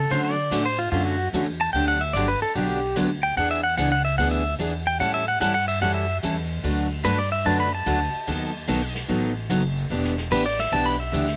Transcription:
Already playing: pedal steel guitar A4
0.10 upright bass D3, steel-string acoustic guitar D3 F#3 A3 C#4 F#4, pedal steel guitar C5, ride
0.25 pedal steel guitar D5
0.50 upright bass A2, steel-string acoustic guitar D3 F#3 A3 C#4 F#4, hi-hat pedal, ride
0.65 pedal steel guitar C5
0.79 pedal steel guitar F4
0.92 upright bass F#2, steel-string acoustic guitar D3 F#3 A3 C#4 F#4, pedal steel guitar F4, ride
1.05 pedal steel guitar F#4
1.33 upright bass E2, steel-string acoustic guitar D3 F#3 A3 C#4 F#4, hi-hat pedal, ride
1.61 pedal steel guitar A5
1.73 upright bass D2, steel-string acoustic guitar D3 F#3 B3 D4 G4, pedal steel guitar G5, ride
1.88 pedal steel guitar F#5
2.01 pedal steel guitar E5
2.13 upright bass G1, steel-string acoustic guitar D3 F#3 B3 D4 G4, pedal steel guitar D5, hi-hat pedal, ride
2.28 pedal steel guitar B4
2.42 pedal steel guitar A4, muted upright bass stroke
2.55 upright bass B1, steel-string acoustic guitar D3 F#3 B3 D4 G4, pedal steel guitar G4, ride
2.96 upright bass D2, steel-string acoustic guitar D3 F#3 B3 D4 G4, hi-hat pedal, ride
3.23 pedal steel guitar G5
3.37 upright bass E2, steel-string acoustic guitar E3 B3 D4 G#4, pedal steel guitar F#5, ride
3.51 pedal steel guitar E5
3.64 pedal steel guitar F#5
3.77 upright bass C#2, steel-string acoustic guitar E3 B3 D4 G#4, pedal steel guitar F#5, hi-hat pedal, ride
3.92 pedal steel guitar F#5
4.05 pedal steel guitar E5, ride
4.18 upright bass D2, steel-string acoustic guitar E3 B3 D4 G#4, pedal steel guitar F#5, ride
4.31 pedal steel guitar E5
4.59 upright bass E2, steel-string acoustic guitar E3 B3 D4 G#4, hi-hat pedal, ride
4.87 pedal steel guitar G5
4.99 upright bass A2, steel-string acoustic guitar E3 G3 C#4 E4 A4, pedal steel guitar F#5, ride
5.14 pedal steel guitar E5
5.28 pedal steel guitar F#5
5.40 upright bass G2, steel-string acoustic guitar E3 G3 C#4 E4 A4, pedal steel guitar F#5, hi-hat pedal, ride
5.54 pedal steel guitar F#5
5.68 pedal steel guitar E5, ride
5.81 upright bass F#2, steel-string acoustic guitar E3 G3 C#4 E4 A4, pedal steel guitar F#5
5.94 pedal steel guitar E5
6.23 upright bass E2, steel-string acoustic guitar E3 G3 C#4 E4 A4, hi-hat pedal, ride
6.50 ride
6.63 upright bass D2, steel-string acoustic guitar D3 F#3 A3 D4 F#4 B4, ride
7.04 upright bass G2, steel-string acoustic guitar D3 F#3 A3 D4 F#4 B4, pedal steel guitar B4, hi-hat pedal, ride
7.18 pedal steel guitar D5
7.32 pedal steel guitar E5, ride
7.45 upright bass F#2, steel-string acoustic guitar D3 F#3 A3 D4 F#4 B4, pedal steel guitar A5, ride
7.60 pedal steel guitar B5
7.75 pedal steel guitar A5
7.86 upright bass D2, steel-string acoustic guitar D3 F#3 A3 D4 F#4 B4, hi-hat pedal, ride
8.14 ride
8.27 upright bass D#2, steel-string acoustic guitar D#3 F#3 B3 D#4 A4, ride
8.67 upright bass B1, steel-string acoustic guitar D#3 F#3 B3 D#4 A4, hi-hat pedal, ride
8.95 snare
9.08 upright bass A1, steel-string acoustic guitar D#3 F#3 B3 D#4 A4, ride
9.49 upright bass F#1, steel-string acoustic guitar D#3 F#3 B3 D#4 A4, hi-hat pedal, ride
9.77 ride
9.90 upright bass E1, steel-string acoustic guitar E3 B3 D4 G4, ride
10.04 snare
10.18 snare
10.31 upright bass A1, steel-string acoustic guitar E3 B3 D4 G4, pedal steel guitar B4, hi-hat pedal, ride
10.46 pedal steel guitar D5
10.59 pedal steel guitar E5, snare, ride
10.72 upright bass B1, steel-string acoustic guitar E3 B3 D4 G4, pedal steel guitar A5, ride
10.86 pedal steel guitar B5
11.00 pedal steel guitar E5
11.12 upright bass D2, steel-string acoustic guitar E3 B3 D4 G4, hi-hat pedal, ride
11.27 snare

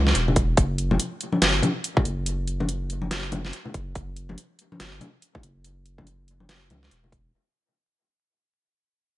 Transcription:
Already playing: sub bass C#2
0.07 snare
0.15 sub bass E1, closed hi-hat
0.28 low conga
0.36 kick, closed hi-hat
0.57 sub bass F#1, kick, closed hi-hat
0.78 closed hi-hat
0.91 high conga, low conga
1.00 closed hi-hat
1.21 closed hi-hat
1.32 high conga
1.42 sub bass G1, snare, closed hi-hat
1.62 closed hi-hat, high conga, low conga
1.84 closed hi-hat
1.97 kick, low conga
2.05 sub bass F#1, closed hi-hat
2.26 closed hi-hat
2.48 closed hi-hat
2.60 high conga, low conga
2.69 closed hi-hat
2.90 closed hi-hat
3.02 high conga
3.11 snare, closed hi-hat
3.32 closed hi-hat, high conga, low conga
3.45 snare
3.53 closed hi-hat
3.66 low conga
3.74 sub bass F#1, kick, closed hi-hat
3.95 sub bass F#1, kick, closed hi-hat
4.17 closed hi-hat
4.29 high conga, low conga
4.38 closed hi-hat
4.59 closed hi-hat
4.72 high conga
4.80 sub bass G1, snare, closed hi-hat
5.00 closed hi-hat, high conga, low conga
5.22 closed hi-hat
5.35 kick, low conga
5.43 sub bass F#1, closed hi-hat
5.64 closed hi-hat
5.86 closed hi-hat
5.98 kick, high conga, low conga
6.07 closed hi-hat
6.28 closed hi-hat
6.40 high conga
6.49 snare, closed hi-hat
6.70 sub bass C#2, closed hi-hat, high conga, low conga
6.83 snare
6.91 sub bass E1, closed hi-hat
7.04 low conga
7.12 kick, closed hi-hat

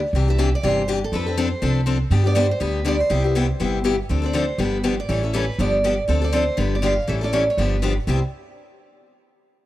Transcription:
0.13 upright bass C2, steel-string acoustic guitar C3 E3 D4 G4
0.28 steel-string acoustic guitar E3 D4 G4 E5
0.38 steel-string acoustic guitar C3 E3 D4 G4
0.55 steel-string acoustic guitar D5
0.63 upright bass G1, steel-string acoustic guitar C3 E3 D4 G4 C5
0.88 steel-string acoustic guitar C3 E3 D4 G4
1.04 steel-string acoustic guitar A4
1.12 upright bass F2, steel-string acoustic guitar F3 C4 D4 A4 B4
1.26 steel-string acoustic guitar C4 D4 A4
1.37 steel-string acoustic guitar F3 C4 D4 A4 C5
1.62 upright bass C2, steel-string acoustic guitar F3 C4 D4 A4
1.73 steel-string acoustic guitar B4
1.86 steel-string acoustic guitar F3 C4 D4 A4
2.11 upright bass G2, steel-string acoustic guitar D3 G3 B3 D4 G4
2.24 steel-string acoustic guitar B3 D4 G4 D5
2.35 steel-string acoustic guitar D3 G3 B3 D4 G4 C5
2.51 steel-string acoustic guitar C5
2.60 upright bass D2, steel-string acoustic guitar D3 G3 B3 D4 G4 B4
2.85 steel-string acoustic guitar D3 G3 B3 D4 G4 D5
3.00 steel-string acoustic guitar C5
3.09 upright bass C2, steel-string acoustic guitar C3 G3 B3 E4 G4
3.24 steel-string acoustic guitar B3 E4 G4
3.35 steel-string acoustic guitar C3 G3 B3 E4 G4
3.60 upright bass G1, steel-string acoustic guitar C3 G3 B3 E4 G4
3.84 steel-string acoustic guitar C3 G3 B3 E4 G4
4.09 upright bass D2, steel-string acoustic guitar D3 F3 C4 D4 A4
4.22 steel-string acoustic guitar C4 D4 A4
4.26 steel-string acoustic guitar D5
4.33 steel-string acoustic guitar D3 F3 C4 D4 A4
4.38 steel-string acoustic guitar C5
4.58 upright bass G1, steel-string acoustic guitar D3 F3 B3 D4 G4 B4
4.84 steel-string acoustic guitar D3 F3 B3 D4 G4
5.00 steel-string acoustic guitar D5
5.09 upright bass A1, steel-string acoustic guitar E3 G3 C#4 E4 A4 C#5
5.23 steel-string acoustic guitar C#4 E4 A4
5.33 steel-string acoustic guitar E3 G3 C#4 E4 A4 B4
5.58 upright bass G1, steel-string acoustic guitar D3 F3 B3 D4 G4 D5
5.84 steel-string acoustic guitar D3 F3 B3 D4 G4 D5
6.08 upright bass D2, steel-string acoustic guitar D3 F3 C4 D4 A4
6.22 steel-string acoustic guitar C4 D4 A4 D5
6.32 steel-string acoustic guitar D3 F3 C4 D4 A4 C5
6.57 upright bass G1, steel-string acoustic guitar D3 F3 B3 D4 G4 B4
6.75 steel-string acoustic guitar D5
6.82 steel-string acoustic guitar D3 F3 B3 D4 G4 F5
7.07 upright bass A1, steel-string acoustic guitar E3 G3 C#4 E4 A4 E5
7.21 steel-string acoustic guitar C#4 E4 A4 D5
7.33 steel-string acoustic guitar E3 G3 C#4 E4 A4
7.50 steel-string acoustic guitar C#5
7.57 upright bass G1, steel-string acoustic guitar D3 F3 B3 D4 G4 B4
7.82 steel-string acoustic guitar D3 F3 B3 D4 G4
8.07 upright bass C2, steel-string acoustic guitar C3 G3 B3 E4 G4 C5

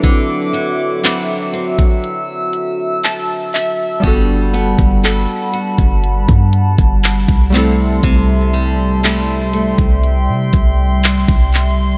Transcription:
Already playing: synth keys F#3 C4 D4 E4 A4 B4, nylon-string guitar D4, analog synth pad F#4 E5 D6
0.03 nylon-string guitar D3, kick, closed hi-hat
0.53 nylon-string guitar F#3, closed hi-hat
1.03 nylon-string guitar F#3 C4 E4, clap, closed hi-hat
1.53 nylon-string guitar C4, analog synth pad E6, closed hi-hat
1.79 kick
2.04 closed hi-hat
2.53 closed hi-hat
3.04 synth keys A5, clap, closed hi-hat
3.53 synth keys E5, clap, closed hi-hat
4.00 808-style bass G1, synth keys G3 B3 D4, analog synth pad G3 F#5 A5 B5, nylon-string guitar G3, kick, closed hi-hat
4.06 synth keys F#4 A4
4.54 nylon-string guitar B3, closed hi-hat
4.79 808-style bass G1, kick
5.03 nylon-string guitar B3 F#4 A4, clap, closed hi-hat
5.53 nylon-string guitar F#4, closed hi-hat
5.78 808-style bass G1, kick
6.04 closed hi-hat
6.29 808-style bass G2, kick
6.53 closed hi-hat
6.78 808-style bass G1, kick
7.03 clap, closed hi-hat
7.28 808-style bass C2, kick
7.50 nylon-string guitar C3, synth keys G3 A3 C4, analog synth pad E5 C6, closed hi-hat
7.55 synth keys E4 A4, clap
8.03 808-style bass C2, nylon-string guitar C3, kick, closed hi-hat
8.53 nylon-string guitar G3, closed hi-hat
9.03 nylon-string guitar G3 A3 E4, clap, closed hi-hat
9.53 nylon-string guitar A3, analog synth pad G5, closed hi-hat
9.78 808-style bass C2, kick
10.04 closed hi-hat
10.29 808-style bass C3
10.53 808-style bass C2, kick, closed hi-hat
11.03 clap, closed hi-hat
11.28 808-style bass C2, kick
11.53 clap, closed hi-hat

